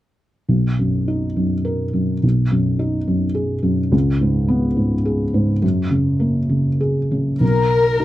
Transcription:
0.49 felt piano B1
0.79 felt piano F#2
1.08 felt piano D#4
1.36 felt piano F#2
1.65 felt piano A#4
1.93 felt piano F#2
2.23 felt piano B1
2.51 felt piano F#2
2.79 felt piano D#4
3.07 felt piano F#2
3.35 felt piano G#4
3.63 felt piano F#2
3.92 felt piano C#2
4.21 felt piano G#2
4.48 felt piano B3
4.77 felt piano G#2
5.05 felt piano G#4
5.34 felt piano G#2
5.62 felt piano F#2
5.91 felt piano C#3
6.20 felt piano A#3
6.49 felt piano C#3
6.80 felt piano G#4
7.11 felt piano C#3
7.40 felt piano B1, violin section A#4
8.00 felt piano D#4 F#4

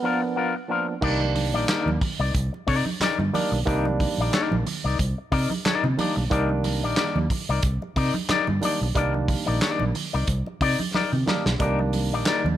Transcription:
Already playing: trombone B3
0.02 tine electric piano F3 B3 D4 A#4, clean electric guitar B3 F4 A#4
0.22 muted clean electric guitar stroke
0.36 clean electric guitar B3 F4 A#4
0.56 muted clean electric guitar stroke
0.68 tine electric piano F3 A#3 B3 D4, clean electric guitar B3 F4 A#4
0.88 muted clean electric guitar stroke
1.01 fingered electric bass C2, tine electric piano D#3 G3 A#3 D4, clean electric guitar D#4 A#4 D5, kick, crash
1.21 muted clean electric guitar stroke, high conga
1.35 muted clean electric guitar stroke, open hi-hat, high conga
1.53 fingered electric bass A#1, clean electric guitar D#4 A#4 D5
1.68 clean electric guitar D#4 A#4 D5, snare, clap, closed hi-hat, muted conga
1.86 fingered electric bass D#2, muted conga, high conga
2.01 muted clean electric guitar stroke, kick, open hi-hat, low conga
2.19 fingered electric bass C2, clean electric guitar D#4 A#4 D5
2.35 fingered electric bass C2, kick, closed hi-hat, muted conga
2.53 muted clean electric guitar stroke, muted conga
2.67 fingered electric bass C3, clean electric guitar D#4 A#4 D5, kick, open hi-hat
2.86 muted clean electric guitar stroke, high conga
3.00 clean electric guitar D#4 A#4 D5, muted fingered electric bass stroke, snare, clap, closed hi-hat, muted conga, high conga
3.19 fingered electric bass G2, muted clean electric guitar stroke, low conga
3.33 tine electric piano D#3 G3 A#3 D4, clean electric guitar D#4 A#4 D5, open hi-hat, high conga
3.52 fingered electric bass B1, muted clean electric guitar stroke
3.65 fingered electric bass C2, tine electric piano D#3 G3 A#3 D4, clean electric guitar D#4 A#4 D5, kick, closed hi-hat, muted conga
3.85 muted clean electric guitar stroke, muted conga, high conga
4.00 muted clean electric guitar stroke, kick, open hi-hat, high conga
4.18 fingered electric bass A#1, clean electric guitar D#4 A#4 D5
4.33 clean electric guitar D#4 A#4 D5, snare, clap, closed hi-hat, muted conga
4.51 fingered electric bass A#1, muted conga, high conga
4.66 muted clean electric guitar stroke, open hi-hat, low conga
4.84 fingered electric bass C2, clean electric guitar D#4 A#4 D5
4.99 fingered electric bass C2, kick, closed hi-hat, muted conga
5.18 muted clean electric guitar stroke
5.32 fingered electric bass C3, clean electric guitar D#4 A#4 D5, kick, open hi-hat
5.50 muted clean electric guitar stroke, high conga
5.65 clean electric guitar D#4 A#4 D5, snare, clap, closed hi-hat, high conga
5.84 fingered electric bass C3, muted clean electric guitar stroke, muted conga, low conga
5.97 tine electric piano D#3 G3 A#3 D4, clean electric guitar D#4 A#4 D5, open hi-hat, high conga
6.16 fingered electric bass B1, muted clean electric guitar stroke
6.30 fingered electric bass C2, tine electric piano D#3 G3 A#3 D4, clean electric guitar D#4 A#4 D5, kick, closed hi-hat, muted conga
6.49 muted clean electric guitar stroke, high conga
6.64 muted clean electric guitar stroke, open hi-hat, high conga
6.83 fingered electric bass A#1, clean electric guitar D#4 A#4 D5
6.96 clean electric guitar D#4 A#4 D5, snare, clap, closed hi-hat, muted conga
7.16 fingered electric bass D#2, high conga
7.30 muted clean electric guitar stroke, kick, open hi-hat, low conga
7.49 fingered electric bass C2, clean electric guitar D#4 A#4 D5
7.63 fingered electric bass C2, kick, closed hi-hat
7.82 muted clean electric guitar stroke, muted conga
7.96 fingered electric bass C3, clean electric guitar D#4 A#4 D5, kick, open hi-hat
8.14 muted clean electric guitar stroke, high conga
8.29 clean electric guitar D#4 A#4 D5, muted fingered electric bass stroke, snare, clap, closed hi-hat, muted conga, high conga
8.47 fingered electric bass G2, muted clean electric guitar stroke, muted conga, low conga
8.61 tine electric piano D#3 G3 A#3 D4, clean electric guitar D#4 A#4, open hi-hat, high conga
8.65 clean electric guitar D5
8.81 fingered electric bass B1, muted clean electric guitar stroke
8.95 fingered electric bass C2, tine electric piano D3 G3 A#3 D4, clean electric guitar D#4 A#4 D5, kick, closed hi-hat, muted conga
9.01 tine electric piano D#3
9.14 muted clean electric guitar stroke, muted conga, high conga
9.28 muted clean electric guitar stroke, kick, open hi-hat, high conga
9.46 fingered electric bass A#1, clean electric guitar D#4 A#4 D5
9.61 clean electric guitar D#4 A#4 D5, snare, clap, closed hi-hat, muted conga
9.79 fingered electric bass A#1, muted conga, high conga
9.94 muted clean electric guitar stroke, open hi-hat, low conga
10.13 fingered electric bass C2, clean electric guitar D#4 A#4 D5
10.27 fingered electric bass C2, kick, closed hi-hat, muted conga
10.46 muted clean electric guitar stroke, muted conga
10.61 fingered electric bass C3, clean electric guitar D#4 A#4 D5, kick, open hi-hat
10.80 muted clean electric guitar stroke, high conga
10.94 clean electric guitar D#4 A#4 D5, snare, muted conga, high conga
11.13 fingered electric bass C3, muted clean electric guitar stroke, muted conga, low conga
11.26 tine electric piano D#3 G3 A#3 D4, clean electric guitar D#4 A#4 D5, snare, high conga
11.46 fingered electric bass B1, snare
11.59 fingered electric bass C2, tine electric piano D3 G3 A#3 D4, clean electric guitar D#4 A#4 D5, kick, closed hi-hat, muted conga
11.65 tine electric piano D#3
11.79 muted clean electric guitar stroke, muted conga, high conga
11.93 muted clean electric guitar stroke, open hi-hat, high conga
12.12 fingered electric bass A#1, clean electric guitar D#4 A#4 D5
12.25 clean electric guitar D#4 A#4 D5, snare, clap, closed hi-hat
12.44 fingered electric bass D#2, muted conga, high conga

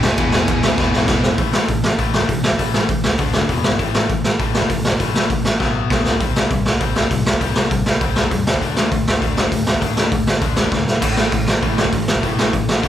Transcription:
0.02 picked electric bass E1, distorted electric guitar E3 G#3 B3 E4, lead electric guitar G#5, snare
0.18 picked electric bass E1, overdriven electric guitar E2 B2 E3, kick, ride
0.32 picked electric bass E1, snare
0.48 picked electric bass E1, overdriven electric guitar E2 B2 E3, kick, ride
0.62 picked electric bass D2, distorted electric guitar E3 G#3 B3 E4, snare
0.77 picked electric bass E1, overdriven electric guitar E2 B2 E3, kick, snare
0.93 picked electric bass E1, snare
1.08 picked electric bass E1, overdriven electric guitar E2 B2 E3, kick, snare
1.23 picked electric bass E1, snare
1.38 picked electric bass A1, overdriven electric guitar A2 E3 A3, kick, open hi-hat
1.53 picked electric bass A1, snare
1.68 picked electric bass A1, overdriven electric guitar A2 E3, kick, open hi-hat
1.83 picked electric bass A1, snare
1.98 picked electric bass A1, overdriven electric guitar A2 E3 A3, kick, open hi-hat
2.14 snare
2.21 kick
2.28 picked electric bass A1, overdriven electric guitar A2 E3, kick, open hi-hat
2.43 picked electric bass A1, snare
2.52 kick
2.58 picked electric bass A1, overdriven electric guitar A2 E3 A3, kick, open hi-hat
2.74 picked electric bass A1, snare
2.88 picked electric bass A1, overdriven electric guitar A2 E3, kick, open hi-hat
3.04 picked electric bass C#2, snare
3.18 picked electric bass D2, overdriven electric guitar D3 A3 D4, kick, open hi-hat
3.33 snare
3.41 kick
3.49 picked electric bass E1, overdriven electric guitar E2 B2 E3, kick, open hi-hat
3.64 picked electric bass G#1, snare
3.72 kick
3.78 picked electric bass A1, overdriven electric guitar A2 E3 A3, kick, open hi-hat
3.94 picked electric bass A1, snare
4.09 picked electric bass A1, overdriven electric guitar A2 E3, kick, open hi-hat
4.24 picked electric bass A1, snare
4.39 picked electric bass A1, overdriven electric guitar A2 E3 A3, kick, open hi-hat
4.55 snare
4.62 kick
4.69 picked electric bass A1, overdriven electric guitar A2 E3, kick, open hi-hat
4.84 picked electric bass A1, snare
4.92 kick
5.00 picked electric bass A1, overdriven electric guitar A2 E3 A3, kick, open hi-hat
5.14 picked electric bass A1, snare
5.30 picked electric bass A1, overdriven electric guitar A2 E3, kick, open hi-hat
5.44 picked electric bass A1, snare
5.59 picked electric bass B1, overdriven electric guitar B2 F#3 B3, kick, snare
5.89 picked electric bass B1, overdriven electric guitar B2 F#3 B3, kick, snare
6.04 picked electric bass C#2, snare
6.19 picked electric bass C2, overdriven electric guitar C3 G3 C4, kick, open hi-hat
6.34 picked electric bass C2, snare
6.50 picked electric bass C2, overdriven electric guitar C3 G3, kick, open hi-hat
6.65 picked electric bass C2, snare
6.80 picked electric bass C2, overdriven electric guitar C3 G3 C4, kick, open hi-hat
6.96 snare
7.03 kick
7.10 picked electric bass C2, overdriven electric guitar C3 G3, kick, open hi-hat
7.26 picked electric bass C2, snare
7.34 kick
7.40 picked electric bass C2, overdriven electric guitar C3 G3 C4, kick, open hi-hat
7.56 picked electric bass C2, snare
7.70 picked electric bass C2, overdriven electric guitar C3 G3, kick, open hi-hat
7.86 picked electric bass C2, snare
8.00 picked electric bass C2, overdriven electric guitar C3 G3 C4, kick, open hi-hat
8.16 snare
8.24 kick
8.30 picked electric bass E2, overdriven electric guitar C3 G3, kick, open hi-hat
8.46 picked electric bass D2, snare
8.54 kick
8.60 picked electric bass D2, overdriven electric guitar D3 A3 D4, kick, open hi-hat
8.76 picked electric bass D2, snare
8.91 picked electric bass D2, overdriven electric guitar D3 A3, kick, open hi-hat
9.07 picked electric bass D2, snare
9.20 picked electric bass D2, overdriven electric guitar D3 A3 D4, kick, open hi-hat
9.37 snare
9.44 kick
9.51 picked electric bass D2, overdriven electric guitar D3 A3, kick, open hi-hat
9.66 picked electric bass D2, snare
9.74 kick
9.81 picked electric bass D2, overdriven electric guitar D3 A3 D4, kick, open hi-hat
9.97 picked electric bass D2, snare
10.12 picked electric bass D2, overdriven electric guitar D3 A3, kick, open hi-hat
10.26 picked electric bass D2, snare
10.41 picked electric bass D2, overdriven electric guitar D3 A3 D4, kick, open hi-hat
10.56 snare
10.64 kick
10.71 picked electric bass D2, overdriven electric guitar D3 A3, kick, snare
10.87 picked electric bass D2, snare
11.01 picked electric bass A1, overdriven electric guitar A2 E3 A3, kick, open hi-hat, crash
11.16 picked electric bass A1, snare
11.31 picked electric bass A1, overdriven electric guitar A2 E3, kick, open hi-hat
11.46 picked electric bass A1, snare
11.61 picked electric bass A1, overdriven electric guitar A2 E3 A3, kick, open hi-hat
11.78 snare
11.85 kick
11.92 picked electric bass A1, overdriven electric guitar A2 E3, kick, open hi-hat
12.08 picked electric bass A1, snare
12.16 kick
12.21 picked electric bass A1, overdriven electric guitar A2 E3 A3, kick, open hi-hat
12.37 picked electric bass A1, snare
12.52 picked electric bass A1, overdriven electric guitar A2 E3, kick, open hi-hat
12.67 picked electric bass A1, snare
12.82 picked electric bass D2, overdriven electric guitar D3 A3 D4, kick, open hi-hat

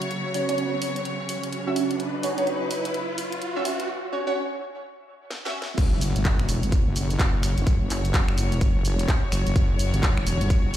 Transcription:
Already playing: string section C#3 F#3 F#4 C#5, riser
0.02 closed hi-hat
0.11 closed hi-hat
0.34 synth stab C#4 F#4 C#5, open hi-hat
0.49 synth stab C#4 F#4 C#5, closed hi-hat
0.58 closed hi-hat
0.82 open hi-hat
0.96 closed hi-hat
1.05 closed hi-hat
1.29 open hi-hat
1.43 closed hi-hat
1.53 closed hi-hat
1.67 synth stab C#4 F#4 E5
1.76 open hi-hat
1.91 closed hi-hat
2.00 string section B4, closed hi-hat
2.23 synth stab C#4 F#4 C#5, open hi-hat
2.38 synth stab C#4 F#4 C#5, closed hi-hat
2.47 closed hi-hat
2.71 open hi-hat
2.85 closed hi-hat
2.94 closed hi-hat
3.18 open hi-hat
3.32 closed hi-hat
3.42 closed hi-hat
3.56 synth stab C#4 F#4 E5
3.65 open hi-hat
3.80 closed hi-hat
4.12 synth stab C#4 F#4 C#5
4.27 synth stab C#4 F#4 C#5
5.30 snare
5.45 synth stab C#4 F#4 E5, snare
5.62 snare
5.78 wobble bass F#1, string section C#3 F#3 F#4 C#5, kick, closed hi-hat, crash, impact, shaker
6.01 open hi-hat, shaker
6.16 wobble bass G1, closed hi-hat, shaker
6.25 kick, clap, closed hi-hat, shaker
6.39 wobble bass F#1, finger snap
6.49 wobble bass E1, open hi-hat, shaker
6.63 wobble bass G1, closed hi-hat, shaker
6.72 kick, closed hi-hat, shaker
6.87 wobble bass F#1
6.96 open hi-hat, shaker
7.10 closed hi-hat, shaker
7.19 wobble bass F#1, kick, clap, closed hi-hat, shaker
7.43 finger snap, open hi-hat, shaker
7.58 wobble bass F#1, closed hi-hat, shaker
7.67 kick, closed hi-hat, shaker
7.81 wobble bass F#1
7.90 clap, open hi-hat, shaker
8.05 closed hi-hat, shaker
8.14 wobble bass F#1, kick, clap, closed hi-hat, shaker
8.28 finger snap
8.38 open hi-hat, shaker
8.52 closed hi-hat, shaker
8.61 wobble bass F#1, kick, closed hi-hat, shaker
8.85 open hi-hat, shaker
8.99 closed hi-hat, shaker
9.08 kick, clap, closed hi-hat, shaker
9.32 wobble bass F#1, finger snap, open hi-hat, shaker
9.47 wobble bass F#1, closed hi-hat, shaker
9.56 wobble bass F#1, kick, closed hi-hat, shaker
9.79 open hi-hat, shaker
9.94 wobble bass G1, closed hi-hat, shaker
10.03 kick, clap, closed hi-hat, shaker
10.17 wobble bass F#1, finger snap
10.27 wobble bass E1, open hi-hat, shaker
10.41 wobble bass G1, closed hi-hat, shaker
10.50 kick, closed hi-hat, shaker
10.65 wobble bass F#1
10.74 open hi-hat

